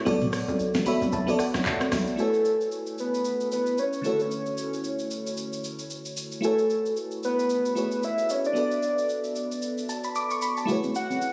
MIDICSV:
0, 0, Header, 1, 5, 480
1, 0, Start_track
1, 0, Key_signature, 3, "major"
1, 0, Tempo, 530973
1, 59, Time_signature, 4, 2, 24, 8
1, 10241, End_track
2, 0, Start_track
2, 0, Title_t, "Soft synth lead"
2, 0, Program_c, 0, 80
2, 1988, Note_on_c, 0, 69, 120
2, 2430, Note_off_c, 0, 69, 0
2, 2711, Note_on_c, 0, 71, 100
2, 3152, Note_off_c, 0, 71, 0
2, 3191, Note_on_c, 0, 71, 100
2, 3429, Note_on_c, 0, 73, 106
2, 3442, Note_off_c, 0, 71, 0
2, 3670, Note_on_c, 0, 69, 91
2, 3684, Note_off_c, 0, 73, 0
2, 3810, Note_on_c, 0, 73, 105
2, 3823, Note_off_c, 0, 69, 0
2, 4764, Note_off_c, 0, 73, 0
2, 5828, Note_on_c, 0, 69, 124
2, 6270, Note_off_c, 0, 69, 0
2, 6551, Note_on_c, 0, 71, 97
2, 6991, Note_off_c, 0, 71, 0
2, 7032, Note_on_c, 0, 71, 95
2, 7273, Note_on_c, 0, 76, 108
2, 7286, Note_off_c, 0, 71, 0
2, 7512, Note_on_c, 0, 73, 93
2, 7525, Note_off_c, 0, 76, 0
2, 7644, Note_off_c, 0, 73, 0
2, 7650, Note_on_c, 0, 74, 100
2, 8568, Note_off_c, 0, 74, 0
2, 9906, Note_on_c, 0, 78, 104
2, 10241, Note_off_c, 0, 78, 0
2, 10241, End_track
3, 0, Start_track
3, 0, Title_t, "FM electric piano"
3, 0, Program_c, 1, 5
3, 0, Control_c, 1, 64, 127
3, 47, Note_on_c, 1, 59, 86
3, 55, Note_on_c, 1, 66, 78
3, 62, Note_on_c, 1, 69, 84
3, 68, Control_c, 1, 64, 0
3, 70, Note_on_c, 1, 73, 82
3, 76, Note_on_c, 1, 74, 98
3, 217, Control_c, 1, 64, 127
3, 644, Note_off_c, 1, 59, 0
3, 648, Note_off_c, 1, 66, 0
3, 652, Note_off_c, 1, 69, 0
3, 656, Note_off_c, 1, 73, 0
3, 659, Note_off_c, 1, 74, 0
3, 767, Note_on_c, 1, 59, 83
3, 774, Note_on_c, 1, 66, 77
3, 781, Note_on_c, 1, 83, 73
3, 782, Note_on_c, 1, 69, 80
3, 790, Note_on_c, 1, 73, 81
3, 797, Note_on_c, 1, 76, 90
3, 1003, Note_off_c, 1, 83, 0
3, 1022, Note_on_c, 1, 81, 79
3, 1069, Note_off_c, 1, 59, 0
3, 1072, Note_off_c, 1, 66, 0
3, 1076, Note_off_c, 1, 69, 0
3, 1080, Note_off_c, 1, 73, 0
3, 1083, Note_off_c, 1, 76, 0
3, 1145, Note_on_c, 1, 59, 86
3, 1153, Note_on_c, 1, 66, 75
3, 1159, Note_on_c, 1, 69, 78
3, 1168, Note_on_c, 1, 73, 78
3, 1175, Note_on_c, 1, 74, 96
3, 1243, Note_off_c, 1, 81, 0
3, 1261, Note_on_c, 1, 78, 74
3, 1483, Note_off_c, 1, 78, 0
3, 1501, Note_on_c, 1, 76, 72
3, 1816, Note_off_c, 1, 59, 0
3, 1820, Note_off_c, 1, 66, 0
3, 1823, Note_off_c, 1, 69, 0
3, 1827, Note_off_c, 1, 73, 0
3, 1831, Note_off_c, 1, 74, 0
3, 1946, Note_off_c, 1, 76, 0
3, 1952, Note_on_c, 1, 57, 60
3, 1964, Note_on_c, 1, 64, 56
3, 1975, Note_on_c, 1, 66, 57
3, 1988, Note_on_c, 1, 80, 58
3, 1992, Control_c, 1, 64, 0
3, 2000, Note_on_c, 1, 71, 57
3, 2011, Note_on_c, 1, 73, 70
3, 2160, Control_c, 1, 64, 127
3, 3611, Note_off_c, 1, 57, 0
3, 3618, Note_off_c, 1, 64, 0
3, 3623, Note_off_c, 1, 66, 0
3, 3630, Note_off_c, 1, 80, 0
3, 3630, Note_on_c, 1, 50, 60
3, 3636, Note_off_c, 1, 71, 0
3, 3642, Note_off_c, 1, 73, 0
3, 3646, Note_on_c, 1, 57, 57
3, 3661, Note_on_c, 1, 64, 56
3, 3672, Control_c, 1, 64, 0
3, 3676, Note_on_c, 1, 66, 56
3, 3691, Note_on_c, 1, 73, 69
3, 3816, Control_c, 1, 64, 127
3, 5528, Note_off_c, 1, 50, 0
3, 5536, Note_off_c, 1, 57, 0
3, 5544, Note_off_c, 1, 64, 0
3, 5551, Note_off_c, 1, 66, 0
3, 5559, Note_off_c, 1, 73, 0
3, 5792, Note_on_c, 1, 57, 64
3, 5804, Note_on_c, 1, 64, 60
3, 5816, Note_on_c, 1, 66, 61
3, 5828, Note_on_c, 1, 80, 57
3, 5829, Control_c, 1, 64, 0
3, 5840, Note_on_c, 1, 71, 60
3, 5852, Note_on_c, 1, 73, 71
3, 5991, Control_c, 1, 64, 127
3, 6981, Note_off_c, 1, 57, 0
3, 6987, Note_off_c, 1, 64, 0
3, 6993, Note_off_c, 1, 66, 0
3, 6999, Note_off_c, 1, 80, 0
3, 7005, Note_off_c, 1, 71, 0
3, 7008, Note_on_c, 1, 57, 50
3, 7012, Note_off_c, 1, 73, 0
3, 7013, Note_on_c, 1, 64, 46
3, 7019, Note_on_c, 1, 66, 47
3, 7025, Note_on_c, 1, 68, 47
3, 7031, Note_on_c, 1, 71, 46
3, 7037, Note_on_c, 1, 73, 53
3, 7714, Note_on_c, 1, 59, 64
3, 7717, Note_off_c, 1, 66, 0
3, 7728, Note_on_c, 1, 66, 57
3, 7733, Note_off_c, 1, 57, 0
3, 7736, Note_off_c, 1, 64, 0
3, 7742, Note_off_c, 1, 68, 0
3, 7743, Note_on_c, 1, 69, 59
3, 7745, Note_off_c, 1, 71, 0
3, 7748, Note_off_c, 1, 73, 0
3, 7750, Control_c, 1, 64, 0
3, 7758, Note_on_c, 1, 71, 59
3, 7773, Note_on_c, 1, 74, 70
3, 7881, Control_c, 1, 64, 127
3, 8942, Note_on_c, 1, 81, 61
3, 9073, Note_off_c, 1, 81, 0
3, 9081, Note_on_c, 1, 83, 64
3, 9175, Note_off_c, 1, 83, 0
3, 9182, Note_on_c, 1, 86, 68
3, 9312, Note_off_c, 1, 86, 0
3, 9322, Note_on_c, 1, 85, 69
3, 9416, Note_off_c, 1, 85, 0
3, 9423, Note_on_c, 1, 83, 65
3, 9553, Note_off_c, 1, 83, 0
3, 9561, Note_on_c, 1, 81, 60
3, 9610, Note_off_c, 1, 59, 0
3, 9617, Note_off_c, 1, 66, 0
3, 9625, Note_off_c, 1, 69, 0
3, 9632, Note_off_c, 1, 71, 0
3, 9632, Note_on_c, 1, 57, 75
3, 9640, Note_off_c, 1, 74, 0
3, 9644, Note_on_c, 1, 64, 70
3, 9656, Note_on_c, 1, 66, 67
3, 9668, Note_on_c, 1, 68, 69
3, 9670, Control_c, 1, 64, 0
3, 9681, Note_on_c, 1, 71, 71
3, 9693, Note_on_c, 1, 73, 81
3, 9787, Note_off_c, 1, 81, 0
3, 9808, Control_c, 1, 64, 127
3, 10241, Note_off_c, 1, 57, 0
3, 10241, Note_off_c, 1, 64, 0
3, 10241, Note_off_c, 1, 66, 0
3, 10241, Note_off_c, 1, 68, 0
3, 10241, Note_off_c, 1, 71, 0
3, 10241, Note_off_c, 1, 73, 0
3, 10241, End_track
4, 0, Start_track
4, 0, Title_t, "Log drum bass"
4, 0, Program_c, 2, 39
4, 58, Note_on_c, 2, 35, 124
4, 413, Note_off_c, 2, 35, 0
4, 437, Note_on_c, 2, 35, 105
4, 662, Note_off_c, 2, 35, 0
4, 677, Note_on_c, 2, 33, 94
4, 902, Note_off_c, 2, 33, 0
4, 917, Note_on_c, 2, 35, 87
4, 1012, Note_off_c, 2, 35, 0
4, 1018, Note_on_c, 2, 35, 103
4, 1148, Note_off_c, 2, 35, 0
4, 1156, Note_on_c, 2, 33, 98
4, 1251, Note_off_c, 2, 33, 0
4, 1397, Note_on_c, 2, 35, 85
4, 1492, Note_off_c, 2, 35, 0
4, 1498, Note_on_c, 2, 37, 95
4, 1628, Note_off_c, 2, 37, 0
4, 1738, Note_on_c, 2, 35, 98
4, 1868, Note_off_c, 2, 35, 0
4, 10241, End_track
5, 0, Start_track
5, 0, Title_t, "Drums"
5, 56, Note_on_c, 9, 64, 67
5, 58, Note_on_c, 9, 82, 68
5, 146, Note_off_c, 9, 64, 0
5, 148, Note_off_c, 9, 82, 0
5, 194, Note_on_c, 9, 82, 51
5, 195, Note_on_c, 9, 45, 93
5, 197, Note_on_c, 9, 63, 80
5, 284, Note_off_c, 9, 82, 0
5, 286, Note_off_c, 9, 45, 0
5, 287, Note_off_c, 9, 63, 0
5, 297, Note_on_c, 9, 37, 106
5, 298, Note_on_c, 9, 46, 59
5, 298, Note_on_c, 9, 82, 98
5, 387, Note_off_c, 9, 37, 0
5, 388, Note_off_c, 9, 46, 0
5, 388, Note_off_c, 9, 82, 0
5, 437, Note_on_c, 9, 63, 79
5, 440, Note_on_c, 9, 82, 60
5, 527, Note_off_c, 9, 63, 0
5, 530, Note_off_c, 9, 82, 0
5, 537, Note_on_c, 9, 82, 79
5, 627, Note_off_c, 9, 82, 0
5, 670, Note_on_c, 9, 63, 73
5, 671, Note_on_c, 9, 82, 57
5, 676, Note_on_c, 9, 38, 78
5, 761, Note_off_c, 9, 63, 0
5, 762, Note_off_c, 9, 82, 0
5, 767, Note_off_c, 9, 38, 0
5, 777, Note_on_c, 9, 46, 48
5, 777, Note_on_c, 9, 64, 73
5, 777, Note_on_c, 9, 82, 85
5, 867, Note_off_c, 9, 46, 0
5, 867, Note_off_c, 9, 64, 0
5, 867, Note_off_c, 9, 82, 0
5, 914, Note_on_c, 9, 63, 70
5, 922, Note_on_c, 9, 82, 70
5, 1005, Note_off_c, 9, 63, 0
5, 1012, Note_off_c, 9, 82, 0
5, 1016, Note_on_c, 9, 82, 81
5, 1106, Note_off_c, 9, 82, 0
5, 1160, Note_on_c, 9, 82, 60
5, 1250, Note_off_c, 9, 82, 0
5, 1255, Note_on_c, 9, 37, 87
5, 1262, Note_on_c, 9, 46, 59
5, 1262, Note_on_c, 9, 82, 104
5, 1345, Note_off_c, 9, 37, 0
5, 1352, Note_off_c, 9, 46, 0
5, 1352, Note_off_c, 9, 82, 0
5, 1394, Note_on_c, 9, 82, 54
5, 1395, Note_on_c, 9, 37, 95
5, 1395, Note_on_c, 9, 38, 68
5, 1395, Note_on_c, 9, 63, 58
5, 1484, Note_off_c, 9, 82, 0
5, 1485, Note_off_c, 9, 37, 0
5, 1485, Note_off_c, 9, 38, 0
5, 1485, Note_off_c, 9, 63, 0
5, 1497, Note_on_c, 9, 39, 85
5, 1499, Note_on_c, 9, 82, 77
5, 1587, Note_off_c, 9, 39, 0
5, 1589, Note_off_c, 9, 82, 0
5, 1634, Note_on_c, 9, 82, 55
5, 1636, Note_on_c, 9, 37, 96
5, 1637, Note_on_c, 9, 63, 72
5, 1725, Note_off_c, 9, 82, 0
5, 1726, Note_off_c, 9, 37, 0
5, 1727, Note_off_c, 9, 63, 0
5, 1734, Note_on_c, 9, 37, 93
5, 1734, Note_on_c, 9, 38, 66
5, 1736, Note_on_c, 9, 46, 56
5, 1736, Note_on_c, 9, 82, 100
5, 1739, Note_on_c, 9, 63, 68
5, 1825, Note_off_c, 9, 37, 0
5, 1825, Note_off_c, 9, 38, 0
5, 1827, Note_off_c, 9, 46, 0
5, 1827, Note_off_c, 9, 82, 0
5, 1830, Note_off_c, 9, 63, 0
5, 1873, Note_on_c, 9, 82, 49
5, 1963, Note_off_c, 9, 82, 0
5, 1978, Note_on_c, 9, 82, 66
5, 2068, Note_off_c, 9, 82, 0
5, 2113, Note_on_c, 9, 82, 45
5, 2204, Note_off_c, 9, 82, 0
5, 2217, Note_on_c, 9, 82, 86
5, 2307, Note_off_c, 9, 82, 0
5, 2359, Note_on_c, 9, 82, 52
5, 2449, Note_off_c, 9, 82, 0
5, 2456, Note_on_c, 9, 82, 69
5, 2547, Note_off_c, 9, 82, 0
5, 2591, Note_on_c, 9, 82, 54
5, 2681, Note_off_c, 9, 82, 0
5, 2696, Note_on_c, 9, 82, 72
5, 2787, Note_off_c, 9, 82, 0
5, 2842, Note_on_c, 9, 82, 62
5, 2932, Note_off_c, 9, 82, 0
5, 2936, Note_on_c, 9, 82, 77
5, 3026, Note_off_c, 9, 82, 0
5, 3079, Note_on_c, 9, 82, 53
5, 3170, Note_off_c, 9, 82, 0
5, 3181, Note_on_c, 9, 82, 92
5, 3271, Note_off_c, 9, 82, 0
5, 3313, Note_on_c, 9, 82, 49
5, 3403, Note_off_c, 9, 82, 0
5, 3417, Note_on_c, 9, 82, 70
5, 3508, Note_off_c, 9, 82, 0
5, 3554, Note_on_c, 9, 82, 53
5, 3644, Note_off_c, 9, 82, 0
5, 3657, Note_on_c, 9, 82, 92
5, 3747, Note_off_c, 9, 82, 0
5, 3793, Note_on_c, 9, 82, 43
5, 3883, Note_off_c, 9, 82, 0
5, 3898, Note_on_c, 9, 82, 66
5, 3988, Note_off_c, 9, 82, 0
5, 4034, Note_on_c, 9, 82, 47
5, 4124, Note_off_c, 9, 82, 0
5, 4137, Note_on_c, 9, 82, 91
5, 4228, Note_off_c, 9, 82, 0
5, 4280, Note_on_c, 9, 82, 52
5, 4370, Note_off_c, 9, 82, 0
5, 4377, Note_on_c, 9, 82, 73
5, 4468, Note_off_c, 9, 82, 0
5, 4512, Note_on_c, 9, 82, 54
5, 4602, Note_off_c, 9, 82, 0
5, 4617, Note_on_c, 9, 82, 74
5, 4708, Note_off_c, 9, 82, 0
5, 4762, Note_on_c, 9, 82, 63
5, 4853, Note_off_c, 9, 82, 0
5, 4857, Note_on_c, 9, 82, 74
5, 4947, Note_off_c, 9, 82, 0
5, 4999, Note_on_c, 9, 82, 55
5, 5090, Note_off_c, 9, 82, 0
5, 5101, Note_on_c, 9, 82, 89
5, 5192, Note_off_c, 9, 82, 0
5, 5234, Note_on_c, 9, 82, 47
5, 5324, Note_off_c, 9, 82, 0
5, 5338, Note_on_c, 9, 82, 69
5, 5428, Note_off_c, 9, 82, 0
5, 5474, Note_on_c, 9, 82, 51
5, 5564, Note_off_c, 9, 82, 0
5, 5576, Note_on_c, 9, 82, 90
5, 5667, Note_off_c, 9, 82, 0
5, 5713, Note_on_c, 9, 82, 43
5, 5803, Note_off_c, 9, 82, 0
5, 5818, Note_on_c, 9, 82, 63
5, 5908, Note_off_c, 9, 82, 0
5, 5954, Note_on_c, 9, 82, 47
5, 6045, Note_off_c, 9, 82, 0
5, 6058, Note_on_c, 9, 82, 86
5, 6148, Note_off_c, 9, 82, 0
5, 6200, Note_on_c, 9, 82, 55
5, 6291, Note_off_c, 9, 82, 0
5, 6298, Note_on_c, 9, 82, 73
5, 6388, Note_off_c, 9, 82, 0
5, 6432, Note_on_c, 9, 82, 53
5, 6523, Note_off_c, 9, 82, 0
5, 6538, Note_on_c, 9, 82, 75
5, 6629, Note_off_c, 9, 82, 0
5, 6684, Note_on_c, 9, 82, 62
5, 6774, Note_off_c, 9, 82, 0
5, 6778, Note_on_c, 9, 82, 78
5, 6868, Note_off_c, 9, 82, 0
5, 6921, Note_on_c, 9, 82, 58
5, 7011, Note_off_c, 9, 82, 0
5, 7023, Note_on_c, 9, 82, 93
5, 7113, Note_off_c, 9, 82, 0
5, 7155, Note_on_c, 9, 82, 50
5, 7246, Note_off_c, 9, 82, 0
5, 7260, Note_on_c, 9, 82, 69
5, 7350, Note_off_c, 9, 82, 0
5, 7396, Note_on_c, 9, 82, 51
5, 7487, Note_off_c, 9, 82, 0
5, 7499, Note_on_c, 9, 82, 90
5, 7590, Note_off_c, 9, 82, 0
5, 7635, Note_on_c, 9, 82, 43
5, 7725, Note_off_c, 9, 82, 0
5, 7741, Note_on_c, 9, 82, 64
5, 7831, Note_off_c, 9, 82, 0
5, 7876, Note_on_c, 9, 82, 47
5, 7967, Note_off_c, 9, 82, 0
5, 7980, Note_on_c, 9, 82, 91
5, 8070, Note_off_c, 9, 82, 0
5, 8122, Note_on_c, 9, 82, 53
5, 8212, Note_off_c, 9, 82, 0
5, 8219, Note_on_c, 9, 82, 68
5, 8309, Note_off_c, 9, 82, 0
5, 8353, Note_on_c, 9, 82, 54
5, 8443, Note_off_c, 9, 82, 0
5, 8459, Note_on_c, 9, 82, 73
5, 8549, Note_off_c, 9, 82, 0
5, 8604, Note_on_c, 9, 82, 64
5, 8694, Note_off_c, 9, 82, 0
5, 8698, Note_on_c, 9, 82, 77
5, 8789, Note_off_c, 9, 82, 0
5, 8841, Note_on_c, 9, 82, 58
5, 8932, Note_off_c, 9, 82, 0
5, 8943, Note_on_c, 9, 82, 98
5, 9034, Note_off_c, 9, 82, 0
5, 9075, Note_on_c, 9, 82, 50
5, 9166, Note_off_c, 9, 82, 0
5, 9180, Note_on_c, 9, 82, 68
5, 9270, Note_off_c, 9, 82, 0
5, 9316, Note_on_c, 9, 82, 52
5, 9406, Note_off_c, 9, 82, 0
5, 9419, Note_on_c, 9, 82, 91
5, 9509, Note_off_c, 9, 82, 0
5, 9555, Note_on_c, 9, 82, 45
5, 9646, Note_off_c, 9, 82, 0
5, 9658, Note_on_c, 9, 64, 68
5, 9660, Note_on_c, 9, 82, 62
5, 9749, Note_off_c, 9, 64, 0
5, 9751, Note_off_c, 9, 82, 0
5, 9796, Note_on_c, 9, 82, 48
5, 9798, Note_on_c, 9, 63, 76
5, 9886, Note_off_c, 9, 82, 0
5, 9888, Note_off_c, 9, 63, 0
5, 9900, Note_on_c, 9, 82, 88
5, 9990, Note_off_c, 9, 82, 0
5, 10037, Note_on_c, 9, 63, 67
5, 10042, Note_on_c, 9, 82, 55
5, 10127, Note_off_c, 9, 63, 0
5, 10133, Note_off_c, 9, 82, 0
5, 10140, Note_on_c, 9, 82, 73
5, 10230, Note_off_c, 9, 82, 0
5, 10241, End_track
0, 0, End_of_file